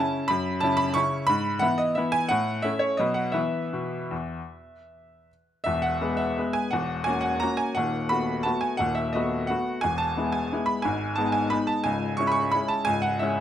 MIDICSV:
0, 0, Header, 1, 2, 480
1, 0, Start_track
1, 0, Key_signature, 4, "major"
1, 0, Tempo, 335383
1, 437, Time_signature, 3, 2, 24, 8
1, 4280, Tempo, 368098
1, 5240, Tempo, 386100
1, 7640, Tempo, 359066
1, 8600, Tempo, 345622
1, 14360, Tempo, 335196
1, 18484, End_track
2, 0, Start_track
2, 0, Title_t, "Grand piano"
2, 0, Program_c, 0, 0
2, 0, Note_on_c, 0, 49, 47
2, 0, Note_on_c, 0, 61, 50
2, 0, Note_on_c, 0, 64, 54
2, 0, Note_on_c, 0, 81, 86
2, 391, Note_off_c, 0, 61, 0
2, 392, Note_off_c, 0, 49, 0
2, 394, Note_off_c, 0, 64, 0
2, 398, Note_on_c, 0, 83, 98
2, 419, Note_off_c, 0, 81, 0
2, 432, Note_on_c, 0, 42, 71
2, 701, Control_c, 0, 64, 127
2, 865, Note_on_c, 0, 81, 93
2, 889, Note_off_c, 0, 83, 0
2, 891, Note_off_c, 0, 42, 0
2, 899, Note_on_c, 0, 49, 52
2, 904, Note_on_c, 0, 61, 52
2, 912, Note_on_c, 0, 64, 56
2, 1099, Note_on_c, 0, 83, 101
2, 1124, Note_off_c, 0, 81, 0
2, 1334, Note_off_c, 0, 49, 0
2, 1337, Note_off_c, 0, 61, 0
2, 1341, Note_off_c, 0, 64, 0
2, 1341, Note_on_c, 0, 85, 101
2, 1364, Note_off_c, 0, 83, 0
2, 1365, Note_on_c, 0, 49, 53
2, 1375, Note_on_c, 0, 64, 58
2, 1376, Note_on_c, 0, 61, 56
2, 1401, Control_c, 0, 64, 0
2, 1809, Note_off_c, 0, 49, 0
2, 1812, Note_on_c, 0, 83, 112
2, 1814, Note_off_c, 0, 64, 0
2, 1815, Note_off_c, 0, 61, 0
2, 1846, Note_off_c, 0, 85, 0
2, 1850, Note_on_c, 0, 44, 69
2, 2101, Control_c, 0, 64, 127
2, 2281, Note_on_c, 0, 78, 99
2, 2307, Note_off_c, 0, 83, 0
2, 2308, Note_on_c, 0, 52, 54
2, 2312, Note_off_c, 0, 44, 0
2, 2318, Note_on_c, 0, 64, 61
2, 2319, Note_on_c, 0, 59, 56
2, 2355, Control_c, 0, 64, 0
2, 2544, Note_on_c, 0, 75, 91
2, 2550, Note_off_c, 0, 78, 0
2, 2760, Note_off_c, 0, 52, 0
2, 2765, Note_off_c, 0, 64, 0
2, 2766, Note_off_c, 0, 59, 0
2, 2791, Note_on_c, 0, 76, 79
2, 2807, Note_off_c, 0, 75, 0
2, 2826, Note_on_c, 0, 52, 55
2, 2827, Note_on_c, 0, 59, 55
2, 2832, Note_on_c, 0, 64, 61
2, 3033, Note_on_c, 0, 80, 101
2, 3051, Note_off_c, 0, 76, 0
2, 3254, Note_off_c, 0, 52, 0
2, 3254, Note_off_c, 0, 59, 0
2, 3257, Note_off_c, 0, 64, 0
2, 3271, Note_on_c, 0, 78, 102
2, 3283, Note_off_c, 0, 80, 0
2, 3299, Note_on_c, 0, 45, 74
2, 3531, Control_c, 0, 64, 127
2, 3754, Note_on_c, 0, 76, 90
2, 3759, Note_off_c, 0, 45, 0
2, 3759, Note_off_c, 0, 78, 0
2, 3781, Note_on_c, 0, 57, 51
2, 3782, Note_on_c, 0, 61, 50
2, 3791, Note_on_c, 0, 64, 52
2, 3794, Control_c, 0, 64, 0
2, 3997, Note_on_c, 0, 73, 76
2, 4015, Note_off_c, 0, 76, 0
2, 4233, Note_off_c, 0, 57, 0
2, 4234, Note_off_c, 0, 61, 0
2, 4239, Note_off_c, 0, 64, 0
2, 4255, Note_on_c, 0, 75, 85
2, 4266, Note_off_c, 0, 73, 0
2, 4281, Note_on_c, 0, 54, 48
2, 4285, Note_on_c, 0, 47, 67
2, 4290, Note_on_c, 0, 59, 46
2, 4303, Note_on_c, 0, 71, 44
2, 4479, Note_on_c, 0, 78, 77
2, 4506, Note_off_c, 0, 75, 0
2, 4520, Control_c, 0, 64, 127
2, 4707, Note_on_c, 0, 76, 75
2, 4711, Note_off_c, 0, 54, 0
2, 4712, Note_off_c, 0, 59, 0
2, 4717, Note_off_c, 0, 71, 0
2, 4731, Note_on_c, 0, 59, 49
2, 4733, Note_on_c, 0, 52, 55
2, 4736, Note_on_c, 0, 71, 48
2, 4739, Note_off_c, 0, 78, 0
2, 4746, Note_off_c, 0, 47, 0
2, 4777, Control_c, 0, 64, 0
2, 5059, Control_c, 0, 64, 127
2, 5079, Note_off_c, 0, 52, 0
2, 5127, Note_off_c, 0, 59, 0
2, 5130, Note_off_c, 0, 71, 0
2, 5244, Note_on_c, 0, 47, 52
2, 5581, Note_off_c, 0, 47, 0
2, 5716, Note_on_c, 0, 40, 52
2, 5741, Control_c, 0, 64, 0
2, 6061, Note_off_c, 0, 40, 0
2, 6497, Control_c, 0, 64, 127
2, 7144, Note_off_c, 0, 76, 0
2, 7189, Control_c, 0, 64, 0
2, 7616, Note_on_c, 0, 76, 93
2, 7641, Note_on_c, 0, 40, 68
2, 7648, Note_on_c, 0, 28, 60
2, 7858, Note_off_c, 0, 76, 0
2, 7858, Note_on_c, 0, 78, 84
2, 7883, Control_c, 0, 64, 127
2, 8094, Note_off_c, 0, 40, 0
2, 8098, Note_off_c, 0, 28, 0
2, 8114, Note_on_c, 0, 56, 48
2, 8116, Note_on_c, 0, 59, 46
2, 8124, Note_on_c, 0, 71, 52
2, 8323, Note_on_c, 0, 76, 82
2, 8347, Note_off_c, 0, 78, 0
2, 8556, Note_off_c, 0, 56, 0
2, 8557, Note_off_c, 0, 59, 0
2, 8561, Note_off_c, 0, 71, 0
2, 8599, Note_on_c, 0, 56, 47
2, 8611, Note_on_c, 0, 59, 47
2, 8613, Note_on_c, 0, 71, 50
2, 8622, Control_c, 0, 64, 0
2, 8820, Note_on_c, 0, 80, 85
2, 8834, Note_off_c, 0, 76, 0
2, 9031, Note_off_c, 0, 56, 0
2, 9038, Note_off_c, 0, 59, 0
2, 9040, Note_off_c, 0, 71, 0
2, 9060, Note_on_c, 0, 78, 85
2, 9066, Note_off_c, 0, 80, 0
2, 9091, Note_on_c, 0, 28, 58
2, 9091, Note_on_c, 0, 40, 67
2, 9310, Control_c, 0, 64, 127
2, 9524, Note_on_c, 0, 80, 89
2, 9532, Note_off_c, 0, 78, 0
2, 9534, Note_off_c, 0, 28, 0
2, 9535, Note_off_c, 0, 40, 0
2, 9556, Note_on_c, 0, 58, 46
2, 9559, Note_on_c, 0, 61, 46
2, 9559, Note_on_c, 0, 66, 53
2, 9755, Note_on_c, 0, 78, 81
2, 9779, Note_off_c, 0, 80, 0
2, 9999, Note_off_c, 0, 58, 0
2, 10000, Note_off_c, 0, 66, 0
2, 10001, Note_off_c, 0, 61, 0
2, 10019, Note_on_c, 0, 82, 87
2, 10025, Note_off_c, 0, 78, 0
2, 10051, Note_on_c, 0, 58, 47
2, 10053, Note_on_c, 0, 61, 44
2, 10057, Control_c, 0, 64, 0
2, 10066, Note_on_c, 0, 66, 53
2, 10260, Note_on_c, 0, 80, 82
2, 10279, Note_off_c, 0, 82, 0
2, 10485, Note_off_c, 0, 58, 0
2, 10486, Note_off_c, 0, 61, 0
2, 10493, Note_off_c, 0, 66, 0
2, 10504, Note_on_c, 0, 78, 85
2, 10513, Note_off_c, 0, 80, 0
2, 10537, Note_on_c, 0, 27, 57
2, 10538, Note_on_c, 0, 39, 66
2, 10778, Control_c, 0, 64, 127
2, 10985, Note_on_c, 0, 83, 90
2, 10992, Note_off_c, 0, 78, 0
2, 10995, Note_off_c, 0, 27, 0
2, 10995, Note_off_c, 0, 39, 0
2, 11011, Note_on_c, 0, 57, 46
2, 11014, Note_on_c, 0, 59, 45
2, 11021, Note_on_c, 0, 66, 51
2, 11445, Note_off_c, 0, 57, 0
2, 11447, Note_off_c, 0, 59, 0
2, 11451, Note_off_c, 0, 66, 0
2, 11454, Note_on_c, 0, 81, 85
2, 11480, Note_off_c, 0, 83, 0
2, 11488, Note_on_c, 0, 57, 44
2, 11491, Note_on_c, 0, 59, 46
2, 11495, Note_on_c, 0, 66, 49
2, 11505, Control_c, 0, 64, 0
2, 11700, Note_on_c, 0, 80, 77
2, 11717, Note_off_c, 0, 81, 0
2, 11922, Note_off_c, 0, 57, 0
2, 11924, Note_off_c, 0, 59, 0
2, 11926, Note_off_c, 0, 66, 0
2, 11930, Note_on_c, 0, 78, 91
2, 11954, Note_off_c, 0, 80, 0
2, 11957, Note_on_c, 0, 27, 54
2, 11966, Note_on_c, 0, 39, 60
2, 12172, Note_on_c, 0, 76, 78
2, 12184, Note_off_c, 0, 78, 0
2, 12265, Control_c, 0, 64, 127
2, 12421, Note_off_c, 0, 27, 0
2, 12421, Note_on_c, 0, 75, 76
2, 12425, Note_off_c, 0, 39, 0
2, 12425, Note_off_c, 0, 76, 0
2, 12451, Note_on_c, 0, 57, 46
2, 12458, Note_on_c, 0, 59, 46
2, 12462, Note_on_c, 0, 66, 52
2, 12884, Note_off_c, 0, 57, 0
2, 12888, Note_off_c, 0, 59, 0
2, 12890, Note_off_c, 0, 66, 0
2, 12900, Note_on_c, 0, 78, 80
2, 12917, Note_off_c, 0, 75, 0
2, 12941, Note_on_c, 0, 57, 45
2, 12941, Note_on_c, 0, 59, 43
2, 12943, Control_c, 0, 64, 0
2, 12943, Note_on_c, 0, 66, 51
2, 13359, Note_off_c, 0, 59, 0
2, 13360, Note_off_c, 0, 57, 0
2, 13360, Note_off_c, 0, 66, 0
2, 13373, Note_on_c, 0, 80, 90
2, 13385, Note_off_c, 0, 78, 0
2, 13402, Note_on_c, 0, 40, 58
2, 13410, Note_on_c, 0, 28, 55
2, 13604, Note_on_c, 0, 81, 84
2, 13616, Note_off_c, 0, 80, 0
2, 13655, Control_c, 0, 64, 127
2, 13859, Note_off_c, 0, 40, 0
2, 13863, Note_off_c, 0, 28, 0
2, 13873, Note_on_c, 0, 56, 45
2, 13874, Note_on_c, 0, 59, 44
2, 13882, Note_on_c, 0, 64, 46
2, 14084, Note_on_c, 0, 80, 78
2, 14106, Note_off_c, 0, 81, 0
2, 14312, Note_off_c, 0, 56, 0
2, 14313, Note_off_c, 0, 59, 0
2, 14317, Note_off_c, 0, 64, 0
2, 14363, Note_on_c, 0, 56, 46
2, 14363, Note_on_c, 0, 59, 45
2, 14370, Note_on_c, 0, 64, 51
2, 14379, Control_c, 0, 64, 0
2, 14554, Note_on_c, 0, 83, 80
2, 14581, Note_off_c, 0, 80, 0
2, 14784, Note_off_c, 0, 56, 0
2, 14784, Note_off_c, 0, 59, 0
2, 14788, Note_off_c, 0, 64, 0
2, 14790, Note_on_c, 0, 80, 81
2, 14807, Note_off_c, 0, 83, 0
2, 14823, Note_on_c, 0, 32, 57
2, 14825, Note_on_c, 0, 44, 63
2, 15098, Control_c, 0, 64, 127
2, 15265, Note_on_c, 0, 81, 87
2, 15279, Note_off_c, 0, 80, 0
2, 15282, Note_off_c, 0, 32, 0
2, 15283, Note_off_c, 0, 44, 0
2, 15296, Note_on_c, 0, 56, 45
2, 15300, Note_on_c, 0, 59, 45
2, 15305, Note_on_c, 0, 63, 51
2, 15506, Note_on_c, 0, 80, 80
2, 15529, Note_off_c, 0, 81, 0
2, 15745, Note_off_c, 0, 56, 0
2, 15747, Note_off_c, 0, 59, 0
2, 15750, Note_off_c, 0, 63, 0
2, 15760, Note_on_c, 0, 83, 84
2, 15776, Note_off_c, 0, 80, 0
2, 15782, Note_on_c, 0, 56, 45
2, 15789, Note_on_c, 0, 59, 44
2, 15798, Note_on_c, 0, 63, 47
2, 15818, Control_c, 0, 64, 0
2, 16002, Note_on_c, 0, 81, 86
2, 16022, Note_off_c, 0, 83, 0
2, 16216, Note_off_c, 0, 56, 0
2, 16220, Note_off_c, 0, 59, 0
2, 16225, Note_off_c, 0, 63, 0
2, 16241, Note_on_c, 0, 80, 86
2, 16253, Note_off_c, 0, 81, 0
2, 16268, Note_on_c, 0, 25, 59
2, 16270, Note_on_c, 0, 37, 65
2, 16551, Control_c, 0, 64, 127
2, 16717, Note_on_c, 0, 85, 90
2, 16733, Note_off_c, 0, 25, 0
2, 16734, Note_off_c, 0, 37, 0
2, 16734, Note_off_c, 0, 80, 0
2, 16743, Note_on_c, 0, 56, 45
2, 16752, Note_on_c, 0, 61, 47
2, 16763, Note_on_c, 0, 64, 50
2, 16832, Note_off_c, 0, 85, 0
2, 16867, Note_on_c, 0, 83, 76
2, 16928, Note_on_c, 0, 85, 85
2, 16956, Note_off_c, 0, 83, 0
2, 17192, Note_off_c, 0, 56, 0
2, 17197, Note_off_c, 0, 61, 0
2, 17203, Note_off_c, 0, 64, 0
2, 17214, Note_on_c, 0, 83, 93
2, 17236, Note_off_c, 0, 85, 0
2, 17247, Note_on_c, 0, 61, 45
2, 17249, Note_on_c, 0, 56, 46
2, 17260, Control_c, 0, 64, 0
2, 17265, Note_on_c, 0, 64, 50
2, 17454, Note_on_c, 0, 81, 84
2, 17472, Note_off_c, 0, 83, 0
2, 17675, Note_off_c, 0, 61, 0
2, 17676, Note_off_c, 0, 56, 0
2, 17685, Note_off_c, 0, 64, 0
2, 17688, Note_on_c, 0, 80, 100
2, 17704, Note_off_c, 0, 81, 0
2, 17715, Note_on_c, 0, 25, 59
2, 17718, Note_on_c, 0, 37, 66
2, 17933, Note_on_c, 0, 78, 84
2, 17938, Note_off_c, 0, 80, 0
2, 17993, Control_c, 0, 64, 127
2, 18178, Note_off_c, 0, 25, 0
2, 18180, Note_off_c, 0, 37, 0
2, 18183, Note_on_c, 0, 76, 82
2, 18185, Note_off_c, 0, 78, 0
2, 18217, Note_on_c, 0, 56, 47
2, 18218, Note_on_c, 0, 61, 47
2, 18228, Note_on_c, 0, 64, 49
2, 18484, Note_off_c, 0, 56, 0
2, 18484, Note_off_c, 0, 61, 0
2, 18484, Note_off_c, 0, 64, 0
2, 18484, Note_off_c, 0, 76, 0
2, 18484, End_track
0, 0, End_of_file